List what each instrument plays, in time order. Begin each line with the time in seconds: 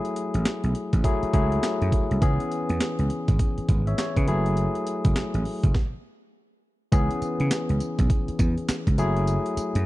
Already playing: tine electric piano F#3 A3 E4 G#4
0.05 closed hi-hat
0.16 closed hi-hat
0.34 slap bass A1, closed hi-hat
0.45 snare, clap, closed hi-hat
0.64 slap bass B1, closed hi-hat
0.75 closed hi-hat
0.93 slap bass A1, kick, closed hi-hat
1.04 tine electric piano F#3 A3 E4 G#4, kick, closed hi-hat
1.23 muted slap bass stroke, closed hi-hat
1.33 slap bass C#2, tine electric piano F#3 A3 E4 G#4, kick, closed hi-hat
1.52 closed hi-hat
1.63 snare, clap, closed hi-hat
1.81 slap bass F#2, closed hi-hat
1.92 kick, closed hi-hat
2.11 slap bass C2, closed hi-hat
2.21 slap bass C#2, tine electric piano E3 B3 C#4 G#4, kick, closed hi-hat
2.40 closed hi-hat
2.52 closed hi-hat
2.69 slap bass E2, closed hi-hat
2.80 snare, clap, closed hi-hat
2.99 slap bass C#2, closed hi-hat
3.10 closed hi-hat
3.28 slap bass G#1, kick, closed hi-hat
3.39 kick, closed hi-hat
3.58 muted slap bass stroke, closed hi-hat
3.69 slap bass G#1, kick, closed hi-hat
3.87 tine electric piano C#5 E5, closed hi-hat
3.98 tine electric piano C#5, snare, clap, closed hi-hat
4.17 slap bass C#3, tine electric piano G#4 B4, kick, closed hi-hat
4.27 slap bass F#1, tine electric piano F#3 A3 E4 G#4, closed hi-hat
4.46 closed hi-hat
4.57 closed hi-hat
4.75 closed hi-hat
4.87 closed hi-hat
5.05 slap bass F#1, kick, closed hi-hat
5.16 snare, clap, closed hi-hat
5.34 slap bass A1, closed hi-hat
5.45 open hi-hat
5.63 slap bass F#1, kick, closed hi-hat
5.75 kick, snare
6.92 slap bass C#2, tine electric piano E3 B3 C#4 G#4, kick, closed hi-hat, tambourine
7.11 closed hi-hat
7.22 muted slap bass stroke, closed hi-hat, tambourine
7.40 slap bass C#3, closed hi-hat
7.51 snare, clap, closed hi-hat, tambourine
7.69 slap bass C#2, closed hi-hat
7.80 closed hi-hat, tambourine
7.99 slap bass B1, kick, closed hi-hat
8.10 kick, closed hi-hat
8.28 muted slap bass stroke, closed hi-hat
8.39 slap bass E2, kick, closed hi-hat, tambourine
8.58 closed hi-hat
8.68 muted slap bass stroke, snare, clap, closed hi-hat, tambourine
8.87 slap bass C#2, kick, closed hi-hat
8.98 slap bass F#1, tine electric piano F#3 A3 E4 G#4, closed hi-hat, tambourine
9.17 closed hi-hat
9.27 closed hi-hat, tambourine
9.46 closed hi-hat
9.57 muted slap bass stroke, closed hi-hat, tambourine
9.75 slap bass F#2, closed hi-hat